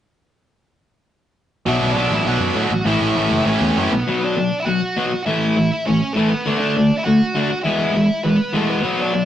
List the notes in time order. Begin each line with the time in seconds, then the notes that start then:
1.66 B1 B2 F#3 B3 D4 E4 E5
1.81 B1
1.91 B1 D4 D5
1.95 B2 F#3 B3 D4
2.10 A1 E5
2.14 E4
2.25 B1 B2 F#3 B3 F#4 F#5
2.29 D4
2.40 F#2
2.54 A2 B2 F#3 B3 D4
2.71 A1
2.85 A1 A2 E3 A3 C#4 E4 E5
3.01 A1
3.16 A1 A2 E3 A3 C#4 E4
3.31 F#1
3.46 A1 A2 E3 A3 C#4 E4 C#5
3.61 E2
3.77 F#2 A2 E3 A3 C#4 E4 A4
3.91 B1 B3 B4
4.07 B2 F#3 B3
4.24 D4 D5
4.36 B2 F#3
4.60 E4 E5
4.65 B2 F#3 F#4 F#5
4.97 B2 F#3 B3
5.26 A2 E3 A3 E4 E5
5.56 A2 E3
5.86 A2 E3 C#4 C#5
6.13 A2 E3 A3 A4
6.17 A3
6.28 B3 B4
6.46 D3 A3 D4
6.59 D4 D5
6.76 D3 A3
6.98 E4 E5
7.04 D3 A3 F#4 F#5
7.35 D3 A3 D4
7.64 E3 G#3 B3 E4 E5
7.95 E3 G#3
8.24 E3 G#3 B3 B4
8.53 E3 G#3 A3 B3 A4
8.70 B3 B4
8.82 B2 F#3 B3
9.01 D4 D5
9.13 B2 F#3